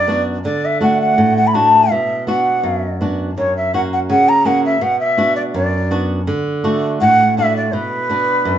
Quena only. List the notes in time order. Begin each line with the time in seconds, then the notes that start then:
Already playing: D5
0.45 D5
0.65 E5
0.82 F#5
1.01 F#5
1.37 F#5
1.47 B5
1.54 A5
1.91 E5
2.28 F#5
3.37 C#5
3.57 E5
3.75 F#5
3.93 F#5
4.11 F#5
4.29 A#5
4.46 F#5
4.65 E5
4.82 F#5
5.00 E5
5.36 D5
5.55 D5
7.01 F#5
7.38 E5
7.56 D5
7.74 B4